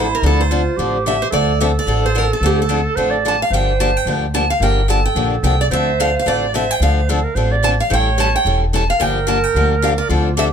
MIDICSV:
0, 0, Header, 1, 5, 480
1, 0, Start_track
1, 0, Key_signature, -1, "minor"
1, 0, Tempo, 274098
1, 399, Time_signature, 4, 2, 24, 8
1, 18438, End_track
2, 0, Start_track
2, 0, Title_t, "Steel-string acoustic guitar"
2, 0, Program_c, 0, 25
2, 0, Note_on_c, 0, 72, 80
2, 233, Note_off_c, 0, 72, 0
2, 257, Note_on_c, 0, 70, 78
2, 422, Note_off_c, 0, 70, 0
2, 460, Note_on_c, 0, 69, 88
2, 704, Note_off_c, 0, 69, 0
2, 711, Note_on_c, 0, 72, 77
2, 1791, Note_off_c, 0, 72, 0
2, 1884, Note_on_c, 0, 76, 92
2, 2136, Note_off_c, 0, 76, 0
2, 2137, Note_on_c, 0, 72, 77
2, 2225, Note_off_c, 0, 72, 0
2, 2337, Note_on_c, 0, 74, 92
2, 2817, Note_off_c, 0, 74, 0
2, 2824, Note_on_c, 0, 76, 83
2, 2911, Note_off_c, 0, 76, 0
2, 3132, Note_on_c, 0, 74, 90
2, 3579, Note_off_c, 0, 74, 0
2, 3602, Note_on_c, 0, 72, 75
2, 3815, Note_off_c, 0, 72, 0
2, 3815, Note_on_c, 0, 70, 91
2, 4054, Note_off_c, 0, 70, 0
2, 4084, Note_on_c, 0, 69, 81
2, 4273, Note_off_c, 0, 69, 0
2, 4302, Note_on_c, 0, 67, 88
2, 4521, Note_off_c, 0, 67, 0
2, 4585, Note_on_c, 0, 69, 80
2, 5648, Note_off_c, 0, 69, 0
2, 5746, Note_on_c, 0, 81, 85
2, 5987, Note_off_c, 0, 81, 0
2, 5994, Note_on_c, 0, 77, 87
2, 6170, Note_off_c, 0, 77, 0
2, 6199, Note_on_c, 0, 79, 90
2, 6627, Note_off_c, 0, 79, 0
2, 6657, Note_on_c, 0, 81, 93
2, 6947, Note_off_c, 0, 81, 0
2, 6947, Note_on_c, 0, 79, 93
2, 7407, Note_off_c, 0, 79, 0
2, 7610, Note_on_c, 0, 81, 94
2, 7879, Note_off_c, 0, 81, 0
2, 7886, Note_on_c, 0, 77, 89
2, 8075, Note_off_c, 0, 77, 0
2, 8102, Note_on_c, 0, 79, 91
2, 8538, Note_off_c, 0, 79, 0
2, 8582, Note_on_c, 0, 81, 91
2, 8820, Note_off_c, 0, 81, 0
2, 8853, Note_on_c, 0, 79, 90
2, 9288, Note_off_c, 0, 79, 0
2, 9532, Note_on_c, 0, 79, 91
2, 9775, Note_off_c, 0, 79, 0
2, 9823, Note_on_c, 0, 74, 84
2, 9911, Note_off_c, 0, 74, 0
2, 10042, Note_on_c, 0, 76, 95
2, 10515, Note_off_c, 0, 76, 0
2, 10516, Note_on_c, 0, 77, 97
2, 10748, Note_off_c, 0, 77, 0
2, 10849, Note_on_c, 0, 77, 78
2, 10975, Note_off_c, 0, 77, 0
2, 10996, Note_on_c, 0, 74, 93
2, 11426, Note_off_c, 0, 74, 0
2, 11478, Note_on_c, 0, 76, 87
2, 11746, Note_off_c, 0, 76, 0
2, 11746, Note_on_c, 0, 79, 95
2, 11940, Note_off_c, 0, 79, 0
2, 11955, Note_on_c, 0, 77, 90
2, 13308, Note_off_c, 0, 77, 0
2, 13383, Note_on_c, 0, 81, 95
2, 13471, Note_off_c, 0, 81, 0
2, 13667, Note_on_c, 0, 77, 88
2, 13866, Note_off_c, 0, 77, 0
2, 13895, Note_on_c, 0, 79, 88
2, 14316, Note_off_c, 0, 79, 0
2, 14361, Note_on_c, 0, 81, 91
2, 14591, Note_off_c, 0, 81, 0
2, 14634, Note_on_c, 0, 79, 95
2, 15059, Note_off_c, 0, 79, 0
2, 15330, Note_on_c, 0, 81, 83
2, 15577, Note_off_c, 0, 81, 0
2, 15584, Note_on_c, 0, 77, 88
2, 15771, Note_off_c, 0, 77, 0
2, 15771, Note_on_c, 0, 79, 96
2, 16249, Note_off_c, 0, 79, 0
2, 16256, Note_on_c, 0, 81, 89
2, 16524, Note_off_c, 0, 81, 0
2, 16524, Note_on_c, 0, 79, 87
2, 16997, Note_off_c, 0, 79, 0
2, 17228, Note_on_c, 0, 77, 83
2, 17316, Note_off_c, 0, 77, 0
2, 17476, Note_on_c, 0, 74, 83
2, 17953, Note_off_c, 0, 74, 0
2, 18193, Note_on_c, 0, 76, 91
2, 18280, Note_off_c, 0, 76, 0
2, 18438, End_track
3, 0, Start_track
3, 0, Title_t, "Clarinet"
3, 0, Program_c, 1, 71
3, 0, Note_on_c, 1, 64, 94
3, 876, Note_on_c, 1, 65, 81
3, 903, Note_off_c, 1, 64, 0
3, 1347, Note_on_c, 1, 67, 96
3, 1373, Note_off_c, 1, 65, 0
3, 2280, Note_off_c, 1, 67, 0
3, 2290, Note_on_c, 1, 69, 105
3, 5177, Note_on_c, 1, 72, 107
3, 5203, Note_off_c, 1, 69, 0
3, 5435, Note_on_c, 1, 74, 93
3, 5461, Note_off_c, 1, 72, 0
3, 5931, Note_off_c, 1, 74, 0
3, 6150, Note_on_c, 1, 72, 98
3, 7530, Note_off_c, 1, 72, 0
3, 8060, Note_on_c, 1, 70, 82
3, 8515, Note_off_c, 1, 70, 0
3, 8558, Note_on_c, 1, 69, 82
3, 9929, Note_off_c, 1, 69, 0
3, 9996, Note_on_c, 1, 72, 99
3, 11259, Note_off_c, 1, 72, 0
3, 11348, Note_on_c, 1, 74, 65
3, 11464, Note_on_c, 1, 72, 85
3, 11490, Note_off_c, 1, 74, 0
3, 12431, Note_on_c, 1, 69, 87
3, 12457, Note_off_c, 1, 72, 0
3, 12676, Note_on_c, 1, 70, 88
3, 12702, Note_off_c, 1, 69, 0
3, 12870, Note_on_c, 1, 72, 95
3, 12896, Note_off_c, 1, 70, 0
3, 13167, Note_on_c, 1, 74, 106
3, 13194, Note_off_c, 1, 72, 0
3, 13638, Note_off_c, 1, 74, 0
3, 13850, Note_on_c, 1, 73, 97
3, 15221, Note_off_c, 1, 73, 0
3, 15736, Note_on_c, 1, 70, 118
3, 17683, Note_on_c, 1, 65, 94
3, 17709, Note_off_c, 1, 70, 0
3, 18141, Note_off_c, 1, 65, 0
3, 18151, Note_on_c, 1, 67, 93
3, 18438, Note_off_c, 1, 67, 0
3, 18438, End_track
4, 0, Start_track
4, 0, Title_t, "Steel-string acoustic guitar"
4, 0, Program_c, 2, 25
4, 407, Note_on_c, 2, 60, 67
4, 409, Note_on_c, 2, 53, 66
4, 410, Note_on_c, 2, 50, 70
4, 416, Note_on_c, 2, 62, 72
4, 419, Note_on_c, 2, 69, 73
4, 723, Note_off_c, 2, 60, 0
4, 724, Note_off_c, 2, 50, 0
4, 724, Note_off_c, 2, 53, 0
4, 728, Note_off_c, 2, 62, 0
4, 729, Note_off_c, 2, 69, 0
4, 891, Note_on_c, 2, 53, 79
4, 893, Note_on_c, 2, 50, 77
4, 898, Note_on_c, 2, 60, 81
4, 907, Note_on_c, 2, 62, 82
4, 908, Note_on_c, 2, 69, 90
4, 1062, Note_off_c, 2, 53, 0
4, 1063, Note_off_c, 2, 50, 0
4, 1065, Note_off_c, 2, 60, 0
4, 1069, Note_off_c, 2, 62, 0
4, 1070, Note_off_c, 2, 69, 0
4, 1381, Note_on_c, 2, 50, 64
4, 1384, Note_on_c, 2, 53, 65
4, 1393, Note_on_c, 2, 62, 74
4, 1396, Note_on_c, 2, 69, 71
4, 1398, Note_on_c, 2, 60, 60
4, 1690, Note_off_c, 2, 50, 0
4, 1691, Note_off_c, 2, 53, 0
4, 1696, Note_off_c, 2, 62, 0
4, 1697, Note_off_c, 2, 69, 0
4, 1698, Note_off_c, 2, 60, 0
4, 1857, Note_on_c, 2, 50, 64
4, 1859, Note_on_c, 2, 53, 66
4, 1865, Note_on_c, 2, 62, 66
4, 1866, Note_on_c, 2, 60, 72
4, 1873, Note_on_c, 2, 69, 88
4, 2025, Note_off_c, 2, 50, 0
4, 2025, Note_off_c, 2, 53, 0
4, 2028, Note_off_c, 2, 62, 0
4, 2029, Note_off_c, 2, 60, 0
4, 2033, Note_off_c, 2, 69, 0
4, 2318, Note_on_c, 2, 50, 75
4, 2319, Note_on_c, 2, 53, 71
4, 2325, Note_on_c, 2, 60, 70
4, 2326, Note_on_c, 2, 62, 75
4, 2339, Note_on_c, 2, 69, 83
4, 2638, Note_off_c, 2, 50, 0
4, 2639, Note_off_c, 2, 53, 0
4, 2642, Note_off_c, 2, 60, 0
4, 2642, Note_off_c, 2, 62, 0
4, 2649, Note_off_c, 2, 69, 0
4, 2810, Note_on_c, 2, 50, 80
4, 2815, Note_on_c, 2, 53, 97
4, 2823, Note_on_c, 2, 62, 93
4, 2824, Note_on_c, 2, 60, 90
4, 2830, Note_on_c, 2, 69, 96
4, 2981, Note_off_c, 2, 50, 0
4, 2983, Note_off_c, 2, 53, 0
4, 2988, Note_off_c, 2, 60, 0
4, 2988, Note_off_c, 2, 62, 0
4, 2991, Note_off_c, 2, 69, 0
4, 3274, Note_on_c, 2, 50, 72
4, 3283, Note_on_c, 2, 53, 66
4, 3295, Note_on_c, 2, 60, 78
4, 3297, Note_on_c, 2, 62, 66
4, 3309, Note_on_c, 2, 69, 83
4, 3596, Note_off_c, 2, 50, 0
4, 3601, Note_off_c, 2, 53, 0
4, 3607, Note_off_c, 2, 60, 0
4, 3608, Note_off_c, 2, 62, 0
4, 3614, Note_off_c, 2, 69, 0
4, 3761, Note_on_c, 2, 50, 72
4, 3770, Note_on_c, 2, 53, 78
4, 3774, Note_on_c, 2, 62, 74
4, 3778, Note_on_c, 2, 60, 86
4, 3780, Note_on_c, 2, 69, 78
4, 3936, Note_off_c, 2, 50, 0
4, 3941, Note_off_c, 2, 53, 0
4, 3943, Note_off_c, 2, 62, 0
4, 3945, Note_off_c, 2, 60, 0
4, 3946, Note_off_c, 2, 69, 0
4, 4252, Note_on_c, 2, 50, 69
4, 4253, Note_on_c, 2, 53, 67
4, 4257, Note_on_c, 2, 60, 72
4, 4270, Note_on_c, 2, 62, 74
4, 4273, Note_on_c, 2, 69, 77
4, 4565, Note_off_c, 2, 50, 0
4, 4566, Note_off_c, 2, 53, 0
4, 4568, Note_off_c, 2, 60, 0
4, 4574, Note_off_c, 2, 62, 0
4, 4576, Note_off_c, 2, 69, 0
4, 4709, Note_on_c, 2, 50, 86
4, 4716, Note_on_c, 2, 53, 87
4, 4717, Note_on_c, 2, 60, 78
4, 4726, Note_on_c, 2, 62, 87
4, 4736, Note_on_c, 2, 69, 95
4, 4890, Note_off_c, 2, 50, 0
4, 4894, Note_off_c, 2, 53, 0
4, 4895, Note_off_c, 2, 60, 0
4, 4899, Note_off_c, 2, 62, 0
4, 4904, Note_off_c, 2, 69, 0
4, 5201, Note_on_c, 2, 50, 62
4, 5201, Note_on_c, 2, 53, 67
4, 5212, Note_on_c, 2, 62, 77
4, 5216, Note_on_c, 2, 60, 79
4, 5218, Note_on_c, 2, 69, 71
4, 5520, Note_off_c, 2, 50, 0
4, 5520, Note_off_c, 2, 53, 0
4, 5526, Note_off_c, 2, 62, 0
4, 5527, Note_off_c, 2, 60, 0
4, 5529, Note_off_c, 2, 69, 0
4, 5690, Note_on_c, 2, 50, 66
4, 5698, Note_on_c, 2, 53, 74
4, 5700, Note_on_c, 2, 60, 76
4, 5707, Note_on_c, 2, 69, 74
4, 5710, Note_on_c, 2, 62, 76
4, 5861, Note_off_c, 2, 50, 0
4, 5865, Note_off_c, 2, 53, 0
4, 5866, Note_off_c, 2, 60, 0
4, 5870, Note_off_c, 2, 69, 0
4, 5871, Note_off_c, 2, 62, 0
4, 6187, Note_on_c, 2, 50, 65
4, 6188, Note_on_c, 2, 53, 67
4, 6196, Note_on_c, 2, 58, 69
4, 6208, Note_on_c, 2, 62, 63
4, 6209, Note_on_c, 2, 67, 79
4, 6493, Note_off_c, 2, 50, 0
4, 6493, Note_off_c, 2, 53, 0
4, 6497, Note_off_c, 2, 58, 0
4, 6504, Note_off_c, 2, 62, 0
4, 6504, Note_off_c, 2, 67, 0
4, 6656, Note_on_c, 2, 50, 80
4, 6662, Note_on_c, 2, 58, 86
4, 6667, Note_on_c, 2, 53, 76
4, 6671, Note_on_c, 2, 67, 89
4, 6676, Note_on_c, 2, 62, 100
4, 6824, Note_off_c, 2, 50, 0
4, 6827, Note_off_c, 2, 58, 0
4, 6830, Note_off_c, 2, 53, 0
4, 6832, Note_off_c, 2, 67, 0
4, 6834, Note_off_c, 2, 62, 0
4, 7124, Note_on_c, 2, 53, 62
4, 7126, Note_on_c, 2, 50, 62
4, 7128, Note_on_c, 2, 58, 69
4, 7145, Note_on_c, 2, 62, 71
4, 7145, Note_on_c, 2, 67, 80
4, 7442, Note_off_c, 2, 50, 0
4, 7442, Note_off_c, 2, 53, 0
4, 7443, Note_off_c, 2, 58, 0
4, 7452, Note_off_c, 2, 62, 0
4, 7452, Note_off_c, 2, 67, 0
4, 7599, Note_on_c, 2, 50, 72
4, 7604, Note_on_c, 2, 53, 75
4, 7612, Note_on_c, 2, 58, 76
4, 7615, Note_on_c, 2, 62, 74
4, 7624, Note_on_c, 2, 67, 76
4, 7776, Note_off_c, 2, 50, 0
4, 7778, Note_off_c, 2, 53, 0
4, 7782, Note_off_c, 2, 58, 0
4, 7784, Note_off_c, 2, 62, 0
4, 7788, Note_off_c, 2, 67, 0
4, 8091, Note_on_c, 2, 50, 59
4, 8097, Note_on_c, 2, 53, 68
4, 8100, Note_on_c, 2, 62, 70
4, 8104, Note_on_c, 2, 58, 68
4, 8113, Note_on_c, 2, 67, 80
4, 8405, Note_off_c, 2, 50, 0
4, 8408, Note_off_c, 2, 53, 0
4, 8410, Note_off_c, 2, 62, 0
4, 8412, Note_off_c, 2, 58, 0
4, 8416, Note_off_c, 2, 67, 0
4, 8548, Note_on_c, 2, 50, 78
4, 8556, Note_on_c, 2, 53, 82
4, 8560, Note_on_c, 2, 58, 84
4, 8571, Note_on_c, 2, 62, 84
4, 8576, Note_on_c, 2, 67, 91
4, 8731, Note_off_c, 2, 50, 0
4, 8734, Note_off_c, 2, 53, 0
4, 8736, Note_off_c, 2, 58, 0
4, 8742, Note_off_c, 2, 62, 0
4, 8744, Note_off_c, 2, 67, 0
4, 9035, Note_on_c, 2, 50, 73
4, 9043, Note_on_c, 2, 53, 68
4, 9043, Note_on_c, 2, 58, 67
4, 9053, Note_on_c, 2, 62, 78
4, 9053, Note_on_c, 2, 67, 76
4, 9358, Note_off_c, 2, 50, 0
4, 9361, Note_off_c, 2, 53, 0
4, 9361, Note_off_c, 2, 58, 0
4, 9366, Note_off_c, 2, 62, 0
4, 9366, Note_off_c, 2, 67, 0
4, 9521, Note_on_c, 2, 50, 78
4, 9527, Note_on_c, 2, 53, 71
4, 9529, Note_on_c, 2, 62, 72
4, 9535, Note_on_c, 2, 58, 70
4, 9546, Note_on_c, 2, 67, 83
4, 9697, Note_off_c, 2, 50, 0
4, 9700, Note_off_c, 2, 53, 0
4, 9701, Note_off_c, 2, 62, 0
4, 9704, Note_off_c, 2, 58, 0
4, 9709, Note_off_c, 2, 67, 0
4, 10002, Note_on_c, 2, 50, 74
4, 10008, Note_on_c, 2, 53, 75
4, 10012, Note_on_c, 2, 62, 73
4, 10013, Note_on_c, 2, 60, 74
4, 10014, Note_on_c, 2, 69, 73
4, 10321, Note_off_c, 2, 50, 0
4, 10324, Note_off_c, 2, 53, 0
4, 10326, Note_off_c, 2, 60, 0
4, 10326, Note_off_c, 2, 62, 0
4, 10327, Note_off_c, 2, 69, 0
4, 10502, Note_on_c, 2, 50, 73
4, 10509, Note_on_c, 2, 53, 86
4, 10513, Note_on_c, 2, 60, 95
4, 10513, Note_on_c, 2, 62, 92
4, 10517, Note_on_c, 2, 69, 86
4, 10668, Note_off_c, 2, 50, 0
4, 10671, Note_off_c, 2, 53, 0
4, 10673, Note_off_c, 2, 60, 0
4, 10673, Note_off_c, 2, 62, 0
4, 10675, Note_off_c, 2, 69, 0
4, 10962, Note_on_c, 2, 50, 68
4, 10968, Note_on_c, 2, 53, 65
4, 10971, Note_on_c, 2, 62, 65
4, 10979, Note_on_c, 2, 69, 66
4, 10981, Note_on_c, 2, 60, 77
4, 11281, Note_off_c, 2, 50, 0
4, 11284, Note_off_c, 2, 53, 0
4, 11286, Note_off_c, 2, 62, 0
4, 11290, Note_off_c, 2, 69, 0
4, 11291, Note_off_c, 2, 60, 0
4, 11454, Note_on_c, 2, 50, 74
4, 11464, Note_on_c, 2, 53, 68
4, 11464, Note_on_c, 2, 60, 74
4, 11469, Note_on_c, 2, 62, 70
4, 11479, Note_on_c, 2, 69, 75
4, 11624, Note_off_c, 2, 50, 0
4, 11628, Note_off_c, 2, 53, 0
4, 11629, Note_off_c, 2, 60, 0
4, 11631, Note_off_c, 2, 62, 0
4, 11636, Note_off_c, 2, 69, 0
4, 11938, Note_on_c, 2, 50, 69
4, 11945, Note_on_c, 2, 60, 74
4, 11949, Note_on_c, 2, 53, 72
4, 11960, Note_on_c, 2, 62, 79
4, 11960, Note_on_c, 2, 69, 69
4, 12249, Note_off_c, 2, 50, 0
4, 12253, Note_off_c, 2, 60, 0
4, 12255, Note_off_c, 2, 53, 0
4, 12260, Note_off_c, 2, 62, 0
4, 12260, Note_off_c, 2, 69, 0
4, 12416, Note_on_c, 2, 50, 75
4, 12425, Note_on_c, 2, 53, 86
4, 12425, Note_on_c, 2, 60, 94
4, 12437, Note_on_c, 2, 62, 95
4, 12437, Note_on_c, 2, 69, 91
4, 12585, Note_off_c, 2, 50, 0
4, 12589, Note_off_c, 2, 53, 0
4, 12589, Note_off_c, 2, 60, 0
4, 12595, Note_off_c, 2, 62, 0
4, 12595, Note_off_c, 2, 69, 0
4, 12889, Note_on_c, 2, 50, 67
4, 12904, Note_on_c, 2, 53, 73
4, 12909, Note_on_c, 2, 62, 71
4, 12914, Note_on_c, 2, 60, 72
4, 12917, Note_on_c, 2, 69, 64
4, 13205, Note_off_c, 2, 50, 0
4, 13212, Note_off_c, 2, 53, 0
4, 13215, Note_off_c, 2, 62, 0
4, 13217, Note_off_c, 2, 60, 0
4, 13219, Note_off_c, 2, 69, 0
4, 13356, Note_on_c, 2, 50, 64
4, 13365, Note_on_c, 2, 53, 71
4, 13371, Note_on_c, 2, 69, 83
4, 13372, Note_on_c, 2, 60, 76
4, 13378, Note_on_c, 2, 62, 83
4, 13535, Note_off_c, 2, 50, 0
4, 13540, Note_off_c, 2, 53, 0
4, 13543, Note_off_c, 2, 60, 0
4, 13543, Note_off_c, 2, 69, 0
4, 13546, Note_off_c, 2, 62, 0
4, 13834, Note_on_c, 2, 52, 73
4, 13835, Note_on_c, 2, 55, 70
4, 13840, Note_on_c, 2, 64, 73
4, 13844, Note_on_c, 2, 61, 72
4, 13852, Note_on_c, 2, 69, 80
4, 14158, Note_off_c, 2, 52, 0
4, 14158, Note_off_c, 2, 55, 0
4, 14161, Note_off_c, 2, 64, 0
4, 14162, Note_off_c, 2, 61, 0
4, 14166, Note_off_c, 2, 69, 0
4, 14320, Note_on_c, 2, 55, 88
4, 14325, Note_on_c, 2, 52, 83
4, 14328, Note_on_c, 2, 61, 91
4, 14334, Note_on_c, 2, 64, 82
4, 14348, Note_on_c, 2, 69, 99
4, 14497, Note_off_c, 2, 55, 0
4, 14500, Note_off_c, 2, 52, 0
4, 14501, Note_off_c, 2, 61, 0
4, 14504, Note_off_c, 2, 64, 0
4, 14511, Note_off_c, 2, 69, 0
4, 14810, Note_on_c, 2, 52, 73
4, 14826, Note_on_c, 2, 64, 66
4, 14828, Note_on_c, 2, 55, 65
4, 14830, Note_on_c, 2, 69, 74
4, 14833, Note_on_c, 2, 61, 69
4, 15125, Note_off_c, 2, 52, 0
4, 15134, Note_off_c, 2, 64, 0
4, 15135, Note_off_c, 2, 55, 0
4, 15136, Note_off_c, 2, 69, 0
4, 15137, Note_off_c, 2, 61, 0
4, 15291, Note_on_c, 2, 52, 70
4, 15291, Note_on_c, 2, 55, 68
4, 15302, Note_on_c, 2, 61, 76
4, 15303, Note_on_c, 2, 64, 75
4, 15303, Note_on_c, 2, 69, 86
4, 15463, Note_off_c, 2, 52, 0
4, 15463, Note_off_c, 2, 55, 0
4, 15468, Note_off_c, 2, 61, 0
4, 15469, Note_off_c, 2, 64, 0
4, 15469, Note_off_c, 2, 69, 0
4, 15755, Note_on_c, 2, 53, 77
4, 15758, Note_on_c, 2, 58, 78
4, 15759, Note_on_c, 2, 50, 70
4, 15764, Note_on_c, 2, 62, 71
4, 15770, Note_on_c, 2, 67, 83
4, 16078, Note_off_c, 2, 53, 0
4, 16080, Note_off_c, 2, 50, 0
4, 16080, Note_off_c, 2, 58, 0
4, 16082, Note_off_c, 2, 62, 0
4, 16086, Note_off_c, 2, 67, 0
4, 16229, Note_on_c, 2, 53, 86
4, 16230, Note_on_c, 2, 50, 92
4, 16240, Note_on_c, 2, 58, 77
4, 16245, Note_on_c, 2, 62, 91
4, 16252, Note_on_c, 2, 67, 95
4, 16412, Note_off_c, 2, 50, 0
4, 16412, Note_off_c, 2, 53, 0
4, 16417, Note_off_c, 2, 58, 0
4, 16420, Note_off_c, 2, 62, 0
4, 16423, Note_off_c, 2, 67, 0
4, 16742, Note_on_c, 2, 50, 70
4, 16745, Note_on_c, 2, 53, 66
4, 16751, Note_on_c, 2, 58, 66
4, 16754, Note_on_c, 2, 62, 78
4, 16764, Note_on_c, 2, 67, 75
4, 17052, Note_off_c, 2, 50, 0
4, 17053, Note_off_c, 2, 53, 0
4, 17056, Note_off_c, 2, 58, 0
4, 17058, Note_off_c, 2, 62, 0
4, 17063, Note_off_c, 2, 67, 0
4, 17201, Note_on_c, 2, 50, 77
4, 17203, Note_on_c, 2, 53, 81
4, 17212, Note_on_c, 2, 62, 75
4, 17220, Note_on_c, 2, 67, 86
4, 17221, Note_on_c, 2, 58, 69
4, 17378, Note_off_c, 2, 50, 0
4, 17379, Note_off_c, 2, 53, 0
4, 17384, Note_off_c, 2, 62, 0
4, 17387, Note_off_c, 2, 67, 0
4, 17388, Note_off_c, 2, 58, 0
4, 17680, Note_on_c, 2, 50, 68
4, 17693, Note_on_c, 2, 53, 75
4, 17693, Note_on_c, 2, 62, 71
4, 17694, Note_on_c, 2, 60, 72
4, 17701, Note_on_c, 2, 69, 82
4, 18001, Note_off_c, 2, 50, 0
4, 18007, Note_off_c, 2, 53, 0
4, 18007, Note_off_c, 2, 62, 0
4, 18008, Note_off_c, 2, 60, 0
4, 18011, Note_off_c, 2, 69, 0
4, 18158, Note_on_c, 2, 53, 93
4, 18161, Note_on_c, 2, 50, 83
4, 18164, Note_on_c, 2, 62, 89
4, 18169, Note_on_c, 2, 60, 91
4, 18180, Note_on_c, 2, 69, 96
4, 18337, Note_off_c, 2, 53, 0
4, 18338, Note_off_c, 2, 50, 0
4, 18340, Note_off_c, 2, 62, 0
4, 18342, Note_off_c, 2, 60, 0
4, 18347, Note_off_c, 2, 69, 0
4, 18438, End_track
5, 0, Start_track
5, 0, Title_t, "Upright bass"
5, 0, Program_c, 3, 32
5, 0, Note_on_c, 3, 33, 76
5, 201, Note_off_c, 3, 33, 0
5, 389, Note_on_c, 3, 38, 80
5, 1161, Note_off_c, 3, 38, 0
5, 1356, Note_on_c, 3, 33, 74
5, 2125, Note_off_c, 3, 33, 0
5, 2316, Note_on_c, 3, 38, 82
5, 3085, Note_off_c, 3, 38, 0
5, 3259, Note_on_c, 3, 33, 76
5, 4035, Note_off_c, 3, 33, 0
5, 4215, Note_on_c, 3, 38, 80
5, 4993, Note_off_c, 3, 38, 0
5, 5187, Note_on_c, 3, 33, 68
5, 5960, Note_off_c, 3, 33, 0
5, 6136, Note_on_c, 3, 31, 76
5, 6913, Note_off_c, 3, 31, 0
5, 7094, Note_on_c, 3, 38, 73
5, 7872, Note_off_c, 3, 38, 0
5, 8057, Note_on_c, 3, 31, 82
5, 8834, Note_off_c, 3, 31, 0
5, 9020, Note_on_c, 3, 34, 76
5, 9436, Note_off_c, 3, 34, 0
5, 9508, Note_on_c, 3, 36, 84
5, 9921, Note_off_c, 3, 36, 0
5, 9989, Note_on_c, 3, 38, 77
5, 10761, Note_off_c, 3, 38, 0
5, 10963, Note_on_c, 3, 33, 80
5, 11730, Note_off_c, 3, 33, 0
5, 11908, Note_on_c, 3, 38, 77
5, 12681, Note_off_c, 3, 38, 0
5, 12876, Note_on_c, 3, 33, 85
5, 13646, Note_off_c, 3, 33, 0
5, 13847, Note_on_c, 3, 33, 78
5, 14613, Note_off_c, 3, 33, 0
5, 14798, Note_on_c, 3, 28, 82
5, 15568, Note_off_c, 3, 28, 0
5, 15761, Note_on_c, 3, 31, 81
5, 16529, Note_off_c, 3, 31, 0
5, 16716, Note_on_c, 3, 38, 80
5, 17487, Note_off_c, 3, 38, 0
5, 17675, Note_on_c, 3, 38, 89
5, 18438, Note_off_c, 3, 38, 0
5, 18438, End_track
0, 0, End_of_file